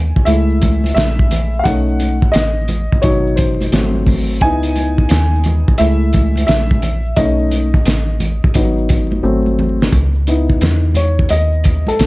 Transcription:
Already playing: fm bass D#2, grand piano G#5
0.16 fm bass C#2, kick, shaker
0.25 fm bass C#2, grand piano G#3 A3 E4 E5, closed hi-hat, high conga, shaker
0.50 shaker
0.61 kick, closed hi-hat, low conga, shaker
0.84 closed hi-hat, high conga, shaker
0.94 fm bass A#1, grand piano E5, snare, closed hi-hat, shaker
1.19 kick, high conga, shaker
1.31 closed hi-hat, low conga, shaker
1.54 shaker
1.59 grand piano F5
1.64 fm bass B1, grand piano A3 C#4 D#4 F#5, kick, closed hi-hat, shaker
1.88 shaker
2.00 closed hi-hat, high conga, shaker
2.22 kick, shaker
2.32 fm bass A1, grand piano D#5, closed hi-hat, shaker
2.36 snare
2.59 shaker
2.68 closed hi-hat, high conga, low conga, shaker
2.92 fm bass G#1, kick, shaker
3.02 fm bass G#1, grand piano B2 F#3 D#4 C#5, kick, closed hi-hat, high conga, shaker
3.26 shaker
3.36 grand piano C5, kick, closed hi-hat, low conga, shaker
3.61 closed hi-hat, high conga, shaker
3.72 fm bass G#1, grand piano F#3 A3 C4, snare, closed hi-hat, shaker
3.95 high conga, shaker
4.07 kick, open hi-hat, low conga, shaker
4.30 shaker
4.41 fm bass C#2, grand piano B3 D#4 E4 G#5, kick, closed hi-hat, shaker
4.63 closed hi-hat, shaker
4.76 closed hi-hat, high conga, shaker
4.98 kick, shaker
5.09 fm bass D#2, snare, closed hi-hat, shaker
5.35 shaker
5.44 closed hi-hat, high conga, low conga, shaker
5.68 fm bass C#2, kick, shaker
5.78 fm bass C#2, grand piano G#3 A3 E4 E5, closed hi-hat, high conga, shaker
6.03 shaker
6.13 kick, closed hi-hat, low conga, shaker
6.36 closed hi-hat, high conga, shaker
6.47 fm bass A#1, grand piano E5, snare, closed hi-hat, shaker
6.71 kick, high conga, shaker
6.82 closed hi-hat, low conga, shaker
7.05 shaker
7.16 fm bass B1, grand piano A3 C#4 D#4 D#5, kick, closed hi-hat, shaker
7.39 shaker
7.51 closed hi-hat, high conga, shaker
7.73 kick, shaker
7.84 fm bass A1, snare, closed hi-hat, shaker
8.09 shaker
8.20 closed hi-hat, high conga, low conga, shaker
8.43 fm bass G#1, kick, shaker
8.54 fm bass G#1, grand piano F#3 B3 D#4, kick, closed hi-hat, high conga, shaker
8.78 shaker
8.89 kick, closed hi-hat, low conga, shaker
9.12 high conga, shaker
9.23 fm bass G#1, grand piano F#3 A3 C4, shaker
9.46 high conga, shaker
9.59 low conga, shaker
9.81 snare, shaker
9.92 fm bass C#2, kick, closed hi-hat, shaker
10.15 shaker
10.27 grand piano B3 D#4 E4, closed hi-hat, high conga, shaker
10.50 kick, shaker
10.60 fm bass E2, snare, closed hi-hat, shaker
10.84 shaker
10.95 grand piano C#5, closed hi-hat, high conga, low conga, shaker
11.18 kick, shaker
11.29 fm bass D#2, grand piano D#5, closed hi-hat, high conga, shaker
11.52 shaker
11.64 kick, closed hi-hat, shaker
11.87 fm bass A#1, grand piano A4, closed hi-hat, high conga, shaker
11.99 fm bass A#1, snare, closed hi-hat, shaker

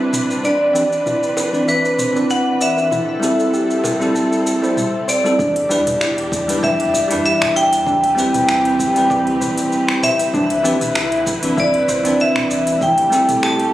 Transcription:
Already playing: tine electric piano G3 C4 D4 E4 B4, string section G3 C4 D4 E4 B4
0.13 mid tom, shaker
0.31 shaker
0.43 string section E3, synth pluck D4, vibraphone D5, shaker
0.73 tine electric piano E3 C4 D4 B4, synth pluck G4, shaker
0.93 shaker
1.06 synth pluck E4, mid tom, shaker
1.23 shaker
1.37 high bongo, shaker
1.52 tine electric piano E3 C4 D4 B4, shaker
1.68 vibraphone B4, synth pluck E5, shaker
1.85 shaker
1.98 synth pluck C5, mid tom, shaker
2.13 tine electric piano E3 C4 D4, shaker
2.17 tine electric piano B4
2.30 vibraphone F#5, shaker
2.61 synth pluck D5, vibraphone E5, shaker
2.77 high bongo, shaker
2.91 string section G3 C4 A4, synth pluck E4, mid tom, shaker
3.20 tine electric piano G3 C4 E4, synth pluck A4, shaker
3.24 tine electric piano A4
3.40 shaker
3.53 synth pluck G4, shaker
3.71 shaker
3.84 mid tom, high bongo, shaker
4.00 tine electric piano G3 C4 E4 A4, shaker
4.15 synth pluck A5, shaker
4.33 shaker
4.46 synth pluck A4, shaker
4.62 tine electric piano G3 C4 E4 C5, shaker
4.77 mid tom, shaker
5.08 synth pluck C5, vibraphone D5, shaker
5.24 tine electric piano G3 C4 E4 A4, shaker
5.38 sub bass E2, string section E3 D4 G4, synth pluck D4, kick, shaker
5.56 closed hi-hat
5.69 tine electric piano G3 D4 E4 B4, synth pluck G4, shaker
5.87 sub bass E2, closed hi-hat, mid tom, shaker
6.01 synth pluck E4, finger snap, shaker
6.18 closed hi-hat
6.32 kick, shaker
6.48 sub bass E2, tine electric piano G3 D4 E4 B4, closed hi-hat, shaker
6.63 vibraphone E5, synth pluck G5, kick, shaker
6.80 closed hi-hat
6.94 sub bass E2, synth pluck D5, kick, shaker
7.08 sub bass G2, tine electric piano G3 D4 E4, closed hi-hat, shaker
7.13 tine electric piano B4
7.26 vibraphone E5, shaker
7.42 sub bass E2, finger snap, mid tom
7.55 synth pluck E5, vibraphone G5, shaker
7.73 closed hi-hat, shaker
7.86 sub bass D2, string section E3 C4 G4 B4, synth pluck D4, kick, shaker
8.04 closed hi-hat
8.15 tine electric piano G3 C4 E4, synth pluck G4, shaker
8.20 tine electric piano B4
8.34 sub bass D2, closed hi-hat, mid tom, shaker
8.48 synth pluck E4, finger snap, shaker
8.65 closed hi-hat
8.79 kick, shaker
8.94 sub bass D2, tine electric piano G3 C4 E4, closed hi-hat, shaker
8.98 tine electric piano B4
9.10 synth pluck D5, kick, shaker
9.27 closed hi-hat
9.41 sub bass D1, synth pluck B4, kick, mid tom, shaker
9.58 closed hi-hat, shaker
9.72 shaker
9.88 finger snap
10.03 synth pluck C5, vibraphone E5, mid tom, shaker
10.19 closed hi-hat, shaker
10.33 sub bass C2, string section D3 E4 B4, synth pluck D4, kick, shaker
10.50 closed hi-hat
10.63 tine electric piano E3 C4 D4 B4, synth pluck G4, shaker
10.81 sub bass C2, closed hi-hat, mid tom, shaker
10.95 synth pluck E4, finger snap, shaker
11.12 closed hi-hat
11.27 kick, shaker
11.42 sub bass C2, tine electric piano E3 C4 D4 B4, closed hi-hat, shaker
11.57 vibraphone D5, synth pluck E5, kick, shaker
11.74 closed hi-hat
11.88 sub bass C2, synth pluck C5, kick, shaker
12.03 sub bass E2, tine electric piano E3 C4 D4, closed hi-hat, shaker
12.08 tine electric piano B4
12.20 vibraphone E5, shaker
12.36 sub bass C2, finger snap, mid tom
12.50 synth pluck D5, shaker
12.67 closed hi-hat, shaker
12.81 sub bass A1, string section C3 A3 G4, synth pluck E4, vibraphone G5, kick, shaker
12.98 closed hi-hat
13.10 tine electric piano G3 C4 E4, synth pluck A4, shaker
13.15 tine electric piano A4
13.29 sub bass A1, closed hi-hat, mid tom, shaker
13.43 synth pluck G4, vibraphone A5, finger snap, shaker
13.59 closed hi-hat

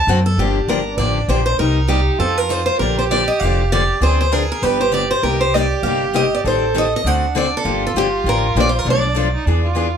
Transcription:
0.07 upright bass F#2, steel-string acoustic guitar D3 A3 C4 F#4 A4
0.26 steel-string acoustic guitar A4
0.37 upright bass G1, steel-string acoustic guitar D3 F3 A#3 D4 G4, violin D4
0.68 upright bass G1, steel-string acoustic guitar D3 F3 A#3 D4 G4 A#4
0.97 upright bass A1, steel-string acoustic guitar D3 F3 A#3 D4 G4 D5
1.28 upright bass A#1, steel-string acoustic guitar D3 F3 A#3 D4 G4 C5
1.46 steel-string acoustic guitar C5
1.58 upright bass C2, steel-string acoustic guitar C3 G3 A#3 D#4 G4 A#4, violin D#4
1.88 steel-string acoustic guitar C3 G3 A#3 D#4 G4
2.18 upright bass F2, steel-string acoustic guitar F3 C4 D#4 A4, violin F4
2.38 steel-string acoustic guitar A#4
2.49 steel-string acoustic guitar F3 C4 D#4 A4 C5
2.66 steel-string acoustic guitar C5
2.78 upright bass A#1, steel-string acoustic guitar D3 F3 A#3 D4 A4 A#4, violin G4
2.99 steel-string acoustic guitar C5
3.11 steel-string acoustic guitar D3 F3 A#3 D4 A4 D5
3.28 steel-string acoustic guitar D#5
3.40 upright bass F1, steel-string acoustic guitar D3 F3 F5
3.44 steel-string acoustic guitar A#3 D4 A4
3.72 steel-string acoustic guitar D3 F3 A#3 D4 A4 D5
4.01 upright bass D2, steel-string acoustic guitar D3 F3 C4 D4 G#4 C5, violin G#4
4.21 steel-string acoustic guitar C5
4.32 steel-string acoustic guitar D3 F3 C4 D4 G#4 A#4, violin G#4
4.52 steel-string acoustic guitar A#4
4.62 upright bass G1, steel-string acoustic guitar D3 F3 B3 D4 G4 B4, violin G4
4.81 steel-string acoustic guitar C5
4.92 steel-string acoustic guitar D3 F3 B3 D4 G4 D5
5.11 steel-string acoustic guitar C5
5.23 upright bass C2, steel-string acoustic guitar C3 G3 A#3 D#4 G4 A#4, violin G4
5.41 steel-string acoustic guitar C5
5.54 steel-string acoustic guitar C3 G3 A#3 D#4 G4 D5
5.83 upright bass G1, steel-string acoustic guitar C3 G3 A#3 D#4 G4 F5
6.13 steel-string acoustic guitar C3 G3 A#3 D#4 G4 D#5
6.35 steel-string acoustic guitar D5
6.44 upright bass A1, steel-string acoustic guitar D#3 G3 C4 G4 A4 C5, violin A4
6.74 steel-string acoustic guitar D#3 G3 C4 G4 A4 D#5
6.96 steel-string acoustic guitar D#5
7.04 upright bass D2, steel-string acoustic guitar D3 A3 C4 F#4 A4 F#5, violin D4
7.35 steel-string acoustic guitar D3 A3 C4 F#4 A4 D5
7.57 steel-string acoustic guitar A4
7.65 upright bass G1, steel-string acoustic guitar D3 F3 A#3 D4 G4, violin F4
7.87 steel-string acoustic guitar A4
7.94 upright bass G1, steel-string acoustic guitar D3 F3 A#3 D4 G4
8.24 upright bass A1, steel-string acoustic guitar D3 F3 A#3 D4 G4
8.29 steel-string acoustic guitar A#4
8.55 upright bass A#1, steel-string acoustic guitar D3 F3 A#3 D4 G4
8.60 steel-string acoustic guitar D5
8.69 steel-string acoustic guitar C5
8.79 steel-string acoustic guitar A#4
8.85 upright bass B1, steel-string acoustic guitar B2 F3 A3 D4 A4, violin D4
8.90 steel-string acoustic guitar D5
9.15 steel-string acoustic guitar B2 F3 A3 D4 A4, violin F4
9.34 violin D#4
9.45 upright bass E2, steel-string acoustic guitar E3 B3 D4 G#4, violin D4
9.64 violin F4
9.75 steel-string acoustic guitar E3 B3 D4 G#4

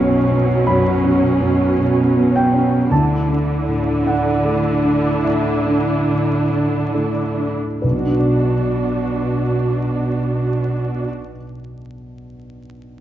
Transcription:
Already playing: grand piano B1 F#2 B3 C#4 F#5 C#6, cello section B2, viola section F#3 C#4
0.31 grand piano C#4
0.67 grand piano F#2 B5
1.04 grand piano C#4
1.41 grand piano F#2
1.78 grand piano C#4
2.17 grand piano B3
2.36 grand piano G5
2.54 grand piano C#4
2.91 grand piano D2 A5, cello section D3, viola section D4 E4
3.30 grand piano D4
3.68 grand piano A2
4.07 grand piano D4 F#5
4.45 grand piano A3
4.84 grand piano D4
5.24 grand piano A2 E5
5.66 grand piano D4
6.07 grand piano A2
6.50 grand piano D4
6.94 grand piano A3
7.40 grand piano D4
7.82 grand piano B1 B4, cello section B2, viola section D4 F#4
7.91 grand piano B2
7.98 grand piano B3
8.05 grand piano D4
8.11 grand piano F#4
8.19 grand piano D5

